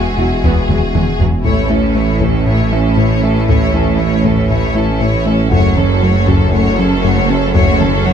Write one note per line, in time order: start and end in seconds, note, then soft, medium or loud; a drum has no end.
0.00 1.45 E1 medium
0.00 1.16 G#3 medium
0.00 1.46 G#3 medium
0.00 1.42 B3 medium
0.00 1.16 F#4 medium
0.00 1.21 F#4 medium
0.00 1.42 F#4 medium
0.00 1.22 G#4 medium
0.00 1.45 E5 medium
0.18 0.26 E1 soft
0.18 0.33 E2 medium
0.18 0.26 E2 soft
0.18 0.27 F#3 soft
0.18 0.34 E4 medium
0.43 0.51 E1 soft
0.43 0.52 E2 soft
0.43 0.59 E2 medium
0.43 0.59 E3 medium
0.43 0.67 B3 soft
0.43 taiko medium
0.69 0.77 E1 soft
0.69 0.84 E2 medium
0.69 0.77 E2 soft
0.69 0.78 F#3 soft
0.69 0.84 G#3 soft
0.69 taiko mid medium
0.94 1.03 E1 soft
0.94 1.10 E2 medium
0.94 1.02 E2 soft
0.94 1.02 G#3 soft
0.94 1.10 E4 medium
0.94 taiko mid medium
1.19 1.28 E1 soft
1.19 1.35 E2 soft
1.19 1.28 E2 soft
1.19 1.28 F#3 soft
1.19 1.35 G#3 soft
1.19 taiko low medium
1.44 5.48 A1 medium
1.44 5.54 A1 medium
1.44 1.60 A2 medium
1.44 5.48 A2 medium
1.44 1.63 A3 soft
1.44 1.60 A3 medium
1.44 1.69 A3 soft
1.44 5.48 A3 medium
1.44 1.63 C#4 medium
1.44 5.48 C#4 medium
1.44 5.48 E4 medium
1.44 1.69 E4 soft
1.44 1.69 C#5 soft
1.44 5.48 E5 medium
1.44 taiko medium
1.70 1.85 A3 medium
1.70 1.96 C#4 soft
1.70 1.86 E4 medium
1.70 1.96 A4 soft
1.95 2.11 A3 medium
1.95 2.22 A3 soft
1.95 2.22 E4 soft
1.95 2.22 C#5 soft
2.21 2.36 A2 medium
2.21 2.37 A3 medium
2.21 2.47 C#4 soft
2.21 2.48 C#4 soft
2.21 2.47 A4 soft
2.21 taiko medium
2.47 2.62 A2 medium
2.47 2.71 A3 soft
2.47 2.65 A3 soft
2.47 2.65 C#4 soft
2.47 2.71 E4 soft
2.47 2.71 C#5 soft
2.72 2.88 A3 medium
2.72 2.98 C#4 soft
2.72 2.88 E4 medium
2.72 2.98 A4 soft
2.97 3.13 A2 medium
2.97 3.23 A3 soft
2.97 3.13 A3 medium
2.97 3.23 E4 soft
2.97 3.24 C#5 soft
3.23 3.39 A3 medium
3.23 3.49 C#4 soft
3.23 3.38 E4 medium
3.23 3.49 A4 soft
3.48 3.64 A2 medium
3.48 3.64 A3 medium
3.48 3.67 A3 medium
3.48 3.73 A3 soft
3.48 3.67 C#4 medium
3.48 3.72 E4 soft
3.48 3.72 C#5 medium
3.48 taiko medium
3.74 3.89 A3 medium
3.74 4.00 C#4 soft
3.74 3.89 E4 medium
3.74 3.99 A4 soft
3.99 4.15 A3 medium
3.99 4.25 A3 soft
3.99 4.26 E4 soft
3.99 4.25 C#5 soft
4.24 4.40 A2 medium
4.24 4.40 A3 medium
4.24 4.50 C#4 soft
4.24 4.51 C#4 soft
4.24 4.51 A4 soft
4.24 taiko medium
4.50 4.65 A2 medium
4.50 4.74 A3 soft
4.50 4.68 A3 medium
4.50 4.68 C#4 medium
4.50 4.75 E4 soft
4.50 4.74 C#5 medium
4.75 4.90 A3 medium
4.75 5.01 C#4 soft
4.75 4.91 E4 medium
4.75 5.02 A4 soft
5.00 5.16 A2 medium
5.00 5.26 A3 soft
5.00 5.17 A3 medium
5.00 5.27 E4 soft
5.00 5.26 C#5 medium
5.26 5.42 A3 medium
5.26 5.52 C#4 soft
5.26 5.52 C#4 medium
5.26 5.42 E4 medium
5.26 5.52 A4 medium
5.52 8.13 F#1 medium
5.52 5.67 F#2 medium
5.52 8.13 F#2 medium
5.52 5.67 F#3 medium
5.52 5.70 A3 medium
5.52 5.76 A3 medium
5.52 8.13 A3 medium
5.52 5.70 C#4 medium
5.52 8.13 C#4 medium
5.52 5.76 F#4 medium
5.52 8.13 F#4 medium
5.52 5.76 C#5 medium
5.52 8.13 C#5 medium
5.52 taiko medium
5.77 5.92 F#3 medium
5.77 5.93 C#4 medium
5.77 6.03 C#4 soft
5.77 6.03 A4 soft
5.77 taiko mid soft
6.03 6.18 F#3 medium
6.03 6.28 A3 medium
6.03 6.29 F#4 medium
6.03 6.28 C#5 soft
6.28 6.43 F#2 medium
6.28 6.43 F#3 medium
6.28 6.54 C#4 soft
6.28 6.54 A4 medium
6.28 taiko medium
6.53 6.69 F#2 medium
6.53 6.71 A3 medium
6.53 6.77 A3 medium
6.53 6.71 C#4 medium
6.53 6.78 F#4 medium
6.53 6.77 C#5 medium
6.79 6.94 F#3 medium
6.79 7.04 C#4 medium
6.79 6.94 C#4 medium
6.79 7.05 A4 medium
7.04 7.20 F#2 medium
7.04 7.20 F#3 medium
7.04 7.30 A3 medium
7.04 7.31 F#4 medium
7.04 7.30 C#5 medium
7.29 7.45 F#3 medium
7.29 7.55 C#4 medium
7.29 7.45 C#4 medium
7.29 7.55 A4 medium
7.29 7.56 A4 medium
7.55 7.71 F#2 medium
7.55 7.70 F#3 medium
7.55 7.79 A3 medium
7.55 7.73 A3 medium
7.55 7.73 C#4 medium
7.55 7.80 F#4 medium
7.55 7.79 C#5 medium
7.55 taiko loud
7.81 7.96 F#3 medium
7.81 7.96 C#4 medium
7.81 8.06 C#4 medium
7.81 8.06 A4 medium
7.81 taiko mid soft
8.06 8.13 F#3 medium
8.06 8.13 A3 medium
8.06 8.13 F#4 medium
8.06 8.13 C#5 medium